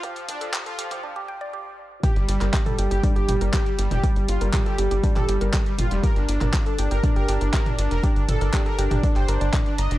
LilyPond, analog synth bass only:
\new Staff \with { instrumentName = "Analog synth bass" } { \clef bass \time 4/4 \key g \minor \tempo 4 = 120 r1 | r16 g,,16 g,,16 g,,16 r8 g,,16 g,,16 r16 g,,16 g,,16 g,,16 r8 g,,16 f,,16 | r16 g,,16 g,,16 g,,16 r8 g,,16 g,,16 r16 g,,16 g,,16 g,,16 r8 g,,16 f,,16 | r16 g,,16 g,,16 g,,16 r8 g,,16 g,,16 r16 g,,16 g,,16 g,,16 r8 g,,16 f,,16 |
r16 g,,16 g,,16 g,,16 r8 g,,16 g,,16 r16 g,,16 g,,16 g,,16 r8 g,,16 f,,16 | }